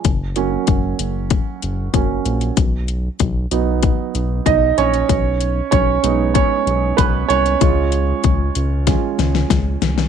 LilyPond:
<<
  \new Staff \with { instrumentName = "Upright piano" } { \time 4/4 \key fis \major \tempo 4 = 95 r1 | r2. <dis' dis''>8 <cis' cis''>8~ | <cis' cis''>4 <cis' cis''>4 <cis' cis''>4 <b b'>8 <cis' cis''>8~ | <cis' cis''>2. r4 | }
  \new Staff \with { instrumentName = "Upright piano" } { \time 4/4 \key fis \major r8 <fis ais cis'>8 r2 <fis ais cis'>8 r8 | r4. <fis b dis'>4. r4 | r4. <gis b dis'>4. r4 | <gis cis' eis'>8 r4. <gis cis' eis'>8 r4. | }
  \new Staff \with { instrumentName = "Analog synth bass" } { \clef bass \time 4/4 \key fis \major fis,,4 fis,,8 fis,,8. r16 fis,,8 fis,,8 ais,,8 | b,,4 b,,8 b,,8. r16 b,,8 b,,8 ais,,8 | b,,4 b,,8 b,,8. r16 b,,8 b,,8 bis,,8 | cis,4 cis,8 cis,8. r16 cis,8 cis,8 bis,,8 | }
  \new DrumStaff \with { instrumentName = "Drums" } \drummode { \time 4/4 <hh bd>8 hh8 <hh bd>8 hh8 <hh bd>8 hh8 <hh bd>8 hh16 hh16 | <hh bd>8 hh8 <hh bd>8 hh8 <hh bd>8 hh8 <hh bd>8 hh16 hh16 | <hh bd>8 hh8 <hh bd>8 hh8 <hh bd>8 hh8 <hh bd>8 hh16 hh16 | <hh bd>8 hh8 <hh bd>8 hh8 <hh bd sn>8 <hh sn>16 sn16 <hh bd sn>8 <hh sn>16 sn16 | }
>>